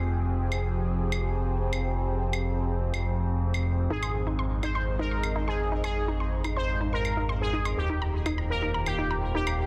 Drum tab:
CL |----x----x----x-|---x----x----x--|-x----x----x----|x----x----x----x|

CL |----x----x----x-|